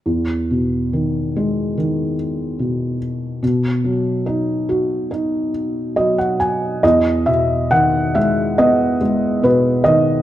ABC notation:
X:1
M:4/4
L:1/16
Q:1/4=71
K:Elyd
V:1 name="Felt piano"
z16 | z12 d f g2 | d2 e2 f2 e2 d4 B2 d2 |]
V:2 name="Felt piano" clef=bass
E,,2 B,,2 D,2 G,2 D,4 B,,4 | B,,2 F,2 D2 F2 D4 F,4 | E,,2 B,,2 D,2 G,2 B,2 G,2 B,,2 D,2 |]